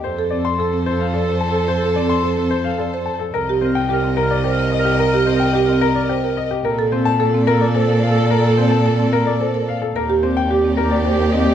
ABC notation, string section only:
X:1
M:3/4
L:1/16
Q:1/4=109
K:Cdor
V:1 name="String section"
[Ac]12- | [Ac]8- [Ac]3 z | [Be]12- | [Be]8- [Be]3 z |
[Ad]12- | [Ad]8- [Ad]3 z | [Gd]12 |]